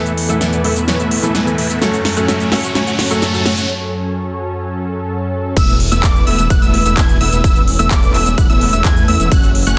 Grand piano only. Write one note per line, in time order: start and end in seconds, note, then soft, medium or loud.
0.00 0.26 E3 loud
0.00 0.26 A3 medium
0.00 0.27 B3 medium
0.00 0.27 A4 loud
0.29 0.61 E3 loud
0.29 0.62 A3 medium
0.29 0.62 B3 medium
0.29 0.62 A4 loud
0.64 0.70 E3 medium
0.64 0.70 A3 medium
0.64 0.70 B3 medium
0.64 0.71 A4 loud
0.87 0.93 E3 medium
0.87 0.94 A3 medium
0.87 0.94 B3 medium
0.87 0.94 C#5 medium
1.22 1.32 E3 loud
1.22 1.32 A3 medium
1.22 1.33 B3 medium
1.22 1.33 A4 loud
1.46 1.56 E3 medium
1.46 1.56 A3 medium
1.46 1.56 B3 medium
1.46 1.56 A4 medium
1.81 2.14 F#3 loud
1.81 2.14 A3 medium
1.81 2.14 C#4 medium
1.81 2.14 A4 loud
2.16 2.49 F#3 medium
2.16 2.49 A3 medium
2.16 2.49 C#4 medium
2.16 2.49 A4 loud
2.51 2.57 F#3 medium
2.51 2.58 A3 medium
2.51 2.58 C#4 medium
2.51 2.58 A4 loud
2.75 2.81 F#3 medium
2.75 2.81 A3 medium
2.75 2.81 C#4 medium
2.75 2.82 C#5 loud
3.10 3.20 F#3 loud
3.10 3.20 A3 medium
3.10 3.20 C#4 medium
3.10 3.20 A4 loud
3.33 3.43 F#3 medium
3.33 3.43 A3 medium
3.33 3.43 C#4 medium
3.33 3.44 A4 medium